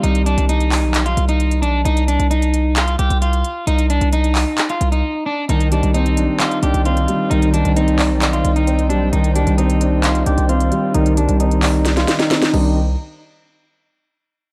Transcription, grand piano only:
X:1
M:4/4
L:1/8
Q:1/4=132
K:Cm
V:1 name="Grand piano"
z8 | z8 | z8 | E, G, C D E D C G, |
E, G, C d E2 C G, | E, G, C D E D C G, | E, G, C d E2 C [E,G,CD] | z8 |]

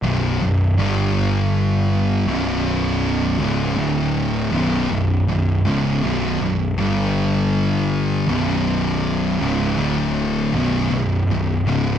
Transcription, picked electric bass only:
X:1
M:4/4
L:1/8
Q:1/4=80
K:Bm
V:1 name="Picked electric bass" clef=bass
B,,,, B,,,, G,,,4 B,,,,2- | B,,,, C,,, D,,,2 B,,,, B,,,, B,,,, C,,, | B,,,, B,,,, G,,,4 B,,,,2- | B,,,, C,,, D,,,2 B,,,, B,,,, B,,,, C,,, |]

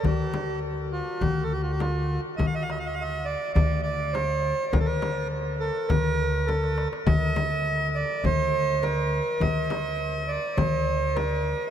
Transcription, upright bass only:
X:1
M:4/4
L:1/8
Q:1/4=103
K:none
V:1 name="Upright bass" clef=bass
D,,4 D,,4 | D,,4 D,,4 | D,,4 D,,4 | D,,4 D,,4 |
D,,4 D,,4 |]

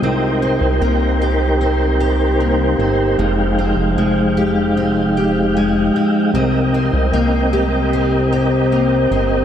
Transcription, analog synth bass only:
X:1
M:4/4
L:1/16
Q:1/4=76
K:Cphr
V:1 name="Analog synth bass" clef=bass
C,,3 C,, C,,8- C,,2 G,,,2 | F,,,3 F,,, F,,,8- F,,,2 z2 | C,,3 C,, C,,8- C,,2 G,,,2 |]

